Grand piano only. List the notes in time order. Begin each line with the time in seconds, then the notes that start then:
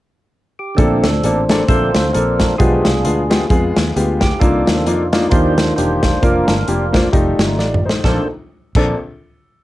0.78 A#2 A#3 C4 D4 A4
1.24 A#3 C4 D4 A4
1.50 A#3 C4 D4 A4
1.69 A#3 C4 D4 A4
2.14 A#3 C4 D4 A4
2.59 B2 G#3 B3 F4 G4
3.04 G#3 B3 F4 G#4
3.30 G#3 B3 F4 G4
3.50 G#3 B3 F4 G#4
3.96 G#3 B3 F4 G4
4.42 C3 A#3 D4 D#4 F4
4.87 A#3 D4 D#4 F4
5.13 A#3 D4 D#4 F4
5.32 A#3 D4 D#4 G4
5.78 A#3 D4 D#4 G4
6.22 A#3 D4 F4 A#4
6.68 A#3 D4 F4 G4
6.93 A#3 D4 F4 C5
7.13 A3 D#4 F4 G4
7.59 F4 D5
7.85 D#4 C5
8.05 A#1 A#3 C4 D4 A4
8.76 A#1 A#3 C4 D4 A4